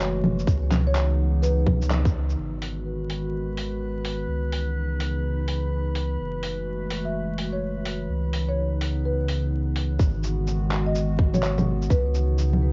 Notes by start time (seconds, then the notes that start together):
Already playing: F#1 E3 G#3 A3 F#4 C#5
0.00 clap, shaker
0.24 low bongo
0.39 shaker
0.47 C#2 C#3 B3 D#4, kick, shaker
0.72 clap, low bongo, shaker
0.87 C#5
0.95 clap, shaker
1.42 B4, shaker
1.67 kick, low bongo
1.82 shaker
1.91 clap, low bongo, shaker
2.05 kick, shaker
2.30 shaker
2.38 G#1 D#3 G#3 B3 F#4 B4
2.62 open hi-hat
3.10 open hi-hat
3.57 open hi-hat
4.05 open hi-hat
4.28 C#2 C#3 E3 D#4
4.53 open hi-hat
5.00 open hi-hat
5.48 open hi-hat
5.95 open hi-hat
6.18 F#1 G#3 A3 F#4
6.43 open hi-hat
6.90 open hi-hat
7.05 E5
7.38 open hi-hat
7.53 C#5
7.86 open hi-hat
8.09 C#2 C#3 B3 D#4
8.33 open hi-hat
8.48 C#5
8.81 open hi-hat
9.05 B4
9.28 open hi-hat
9.76 open hi-hat
9.99 G#1 D#3 G#3 B3 F#4, kick, shaker
10.24 shaker
10.47 shaker
10.71 clap
10.86 D#5
10.95 shaker
11.19 kick
11.34 C#5, low bongo, shaker
11.43 clap, shaker
11.58 low bongo, shaker
11.82 shaker
11.90 C#2 C#3 E3 D#4 B4, kick, shaker
12.14 shaker
12.38 shaker
12.53 low bongo